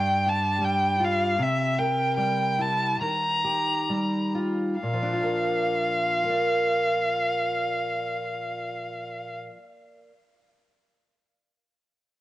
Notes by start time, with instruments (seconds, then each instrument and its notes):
Already playing: steel-string acoustic guitar G2 G3, violin G5
0.26 steel-string acoustic guitar G4, violin A5
0.61 steel-string acoustic guitar G3, violin G5
1.00 steel-string acoustic guitar F4
1.04 violin F5
1.39 steel-string acoustic guitar C3
1.43 violin E5
1.79 steel-string acoustic guitar A#4, violin G5
2.17 steel-string acoustic guitar G3, violin G5
2.59 steel-string acoustic guitar E4, violin A5
3.01 steel-string acoustic guitar D#3, violin A#5
3.44 steel-string acoustic guitar G4
3.90 steel-string acoustic guitar G3
4.35 steel-string acoustic guitar F4
4.80 steel-string acoustic guitar A#2, violin F5
4.93 steel-string acoustic guitar F3
5.03 steel-string acoustic guitar D4
5.13 steel-string acoustic guitar F4
5.23 steel-string acoustic guitar A#4
6.24 steel-string acoustic guitar A#4
6.30 steel-string acoustic guitar D5